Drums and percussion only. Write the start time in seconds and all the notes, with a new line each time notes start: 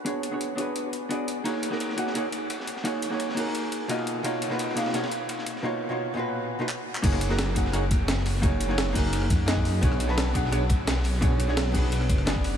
0.06 closed hi-hat
0.23 closed hi-hat
0.41 closed hi-hat
0.58 closed hi-hat
0.76 closed hi-hat
0.93 closed hi-hat
1.11 closed hi-hat
1.28 closed hi-hat
1.45 closed hi-hat, ride
1.63 closed hi-hat, ride
1.72 snare
1.80 closed hi-hat, ride
1.89 snare
1.98 closed hi-hat, ride
2.07 snare
2.15 closed hi-hat, ride
2.32 closed hi-hat, ride
2.50 closed hi-hat, ride
2.60 snare
2.67 closed hi-hat, ride
2.76 snare
2.85 closed hi-hat, ride
3.02 closed hi-hat, ride
3.11 snare
3.19 closed hi-hat, ride
3.29 snare
3.37 closed hi-hat, open hi-hat
3.46 snare
3.55 closed hi-hat, ride
3.63 ride
3.72 closed hi-hat, ride
3.89 closed hi-hat, ride
3.99 ride
4.07 closed hi-hat
4.24 closed hi-hat, ride
4.42 closed hi-hat, ride
4.50 snare
4.59 closed hi-hat, ride
4.69 snare
4.77 snare, closed hi-hat, ride
4.86 snare, ride
4.94 snare, closed hi-hat, ride
5.03 snare, ride
5.12 closed hi-hat, ride
5.29 closed hi-hat, ride
5.38 snare
5.46 closed hi-hat, ride
5.55 snare
6.69 clap
6.95 clap
7.04 kick, closed hi-hat, crash, ride
7.13 cross-stick
7.21 closed hi-hat, ride
7.30 snare
7.38 snare, closed hi-hat, ride
7.48 snare
7.56 kick, closed hi-hat, ride
7.65 snare
7.73 cross-stick, closed hi-hat, ride
7.91 kick, closed hi-hat, ride
8.08 snare, closed hi-hat, ride
8.17 snare
8.26 open hi-hat, ride
8.35 snare
8.43 kick, closed hi-hat, ride
8.60 closed hi-hat, ride
8.70 snare
8.78 snare, closed hi-hat, ride
8.87 snare
8.95 kick, closed hi-hat, open hi-hat
9.04 snare
9.13 closed hi-hat, ride
9.22 cross-stick, ride
9.30 kick, closed hi-hat, ride
9.48 snare, closed hi-hat, ride
9.57 kick, ride
9.65 open hi-hat
9.82 kick, closed hi-hat, ride
9.92 cross-stick
10.00 closed hi-hat, ride
10.08 snare
10.18 snare, closed hi-hat, ride
10.27 snare
10.35 kick, closed hi-hat, ride
10.45 snare
10.52 cross-stick, closed hi-hat, ride
10.69 kick, closed hi-hat, ride
10.87 snare, closed hi-hat, ride
10.97 snare
11.04 open hi-hat, ride
11.14 snare
11.22 kick, closed hi-hat, ride
11.40 closed hi-hat, ride
11.48 snare
11.57 snare, closed hi-hat, ride
11.66 snare
11.75 kick, closed hi-hat, open hi-hat
11.83 snare
11.92 closed hi-hat, ride
12.01 cross-stick, ride
12.09 kick, closed hi-hat, ride
12.18 cross-stick
12.27 snare, closed hi-hat, ride
12.36 kick, ride
12.44 open hi-hat, ride